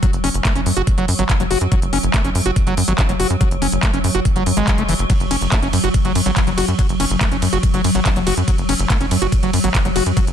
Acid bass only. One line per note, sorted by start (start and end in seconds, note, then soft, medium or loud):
0.03 0.06 F#3 medium
0.24 0.29 C#4 loud
0.45 0.53 A3 medium
0.55 0.61 C#4 medium
0.77 0.82 F#4 loud
0.98 1.05 F#3 medium
1.19 1.24 F#3 medium
1.40 1.43 F#3 medium
1.51 1.58 F#4 medium
1.72 1.75 F#3 medium
1.93 1.98 C#4 loud
2.14 2.22 A3 medium
2.24 2.30 C#4 medium
2.46 2.51 F#4 loud
2.67 2.74 F#3 medium
2.88 2.93 F#3 medium
3.09 3.12 F#3 medium
3.20 3.27 F#4 medium
3.41 3.44 F#3 medium
3.62 3.67 C#4 loud
3.83 3.91 A3 medium
3.94 3.99 C#4 medium
4.15 4.20 F#4 loud
4.36 4.43 F#3 medium
4.57 4.80 G#3 loud
4.78 4.83 A3 medium
4.89 4.94 E3 loud
5.10 5.13 F#3 medium
5.31 5.36 C#4 loud
5.52 5.60 A3 medium
5.63 5.68 C#4 medium
5.84 5.89 F#4 loud
6.05 6.12 F#3 medium
6.26 6.31 F#3 medium
6.47 6.50 F#3 medium
6.58 6.65 F#4 medium
6.79 6.82 F#3 medium
7.00 7.05 C#4 loud
7.21 7.29 A3 medium
7.32 7.37 C#4 medium
7.53 7.58 F#4 loud
7.74 7.81 F#3 medium
7.95 8.00 F#3 medium
8.16 8.19 F#3 medium
8.27 8.34 F#4 medium
8.48 8.51 F#3 medium
8.69 8.74 C#4 loud
8.90 8.98 A3 medium
9.01 9.06 C#4 medium
9.22 9.27 F#4 loud
9.43 9.50 F#3 medium
9.64 9.69 F#3 medium
9.85 9.88 F#3 medium
9.96 10.03 F#4 medium
10.17 10.20 F#3 medium